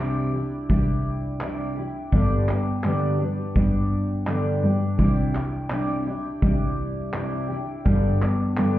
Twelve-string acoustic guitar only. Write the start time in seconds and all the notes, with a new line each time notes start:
Already playing: C3
0.00 G3 D4 E4 G4
0.33 D4 E4 G4
0.69 G3 D4 E4 G4
1.41 C3 G3 D4 E4 G4
1.76 D4 E4 G4
2.12 G2 D3 G3 B3 D4 G4
2.47 G3 B3 D4 G4
2.84 G2 D3 G3 B3 D4 G4
3.19 G3 B3 D4 G4
3.55 G3 B3 D4 G4
4.26 G2 D3 G3 B3 D4 G4
4.61 G3 B3 D4 G4
4.97 C3 G3 D4 E4 G4
5.33 D4 E4 G4
5.70 C3 G3 D4 E4 G4
6.06 D4 E4 G4
6.41 G3 D4 E4 G4
7.13 C3 G3 D4 E4 G4
7.49 D4 E4 G4
7.85 G2 D3 G3 B3 D4 G4
8.21 G3 B3 D4 G4
8.56 G2 D3 G3 B3 D4 G4